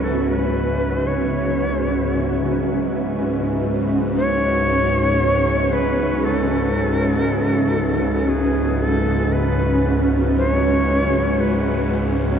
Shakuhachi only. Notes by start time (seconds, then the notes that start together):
0.04 A4
0.28 B4
1.07 C#5
4.17 C#5
5.73 B4
6.24 A4
8.29 G#4
8.79 A4
9.32 B4
10.37 C5
10.52 C#5
11.41 B4